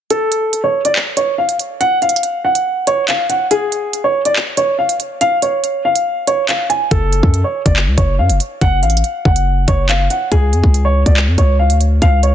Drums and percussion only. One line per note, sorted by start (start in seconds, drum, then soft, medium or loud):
0.10 closed hi-hat medium
0.32 closed hi-hat medium
0.53 closed hi-hat medium
0.85 closed hi-hat medium
0.96 clap loud
1.17 closed hi-hat medium
1.49 closed hi-hat medium
1.59 closed hi-hat medium
1.81 closed hi-hat medium
2.02 closed hi-hat soft
2.09 closed hi-hat medium
2.16 closed hi-hat medium
2.23 closed hi-hat medium
2.55 closed hi-hat medium
2.87 closed hi-hat medium
3.08 clap loud
3.08 closed hi-hat medium
3.30 closed hi-hat medium
3.51 closed hi-hat medium
3.72 closed hi-hat medium
3.93 closed hi-hat medium
4.25 closed hi-hat medium
4.36 clap loud
4.57 closed hi-hat medium
4.89 closed hi-hat medium
5.00 closed hi-hat medium
5.21 closed hi-hat medium
5.42 closed hi-hat medium
5.64 closed hi-hat medium
5.96 closed hi-hat medium
6.27 closed hi-hat medium
6.49 clap loud
6.49 closed hi-hat medium
6.70 closed hi-hat medium
6.91 kick loud
6.91 closed hi-hat medium
7.13 closed hi-hat medium
7.23 kick loud
7.34 closed hi-hat medium
7.66 kick loud
7.66 closed hi-hat medium
7.76 clap loud
7.98 kick medium
7.98 closed hi-hat medium
8.30 closed hi-hat loud
8.40 closed hi-hat medium
8.61 kick loud
8.61 closed hi-hat medium
8.83 closed hi-hat soft
8.90 closed hi-hat medium
8.97 closed hi-hat medium
9.04 closed hi-hat medium
9.25 kick loud
9.36 closed hi-hat medium
9.68 kick medium
9.68 closed hi-hat medium
9.89 clap loud
9.89 closed hi-hat medium
10.10 closed hi-hat medium
10.32 kick loud
10.32 closed hi-hat medium
10.53 closed hi-hat medium
10.64 kick loud
10.74 closed hi-hat medium
11.06 kick loud
11.06 closed hi-hat medium
11.17 clap loud
11.38 kick medium
11.38 closed hi-hat medium
11.70 closed hi-hat medium
11.81 closed hi-hat medium
12.02 kick loud
12.02 closed hi-hat medium
12.23 closed hi-hat medium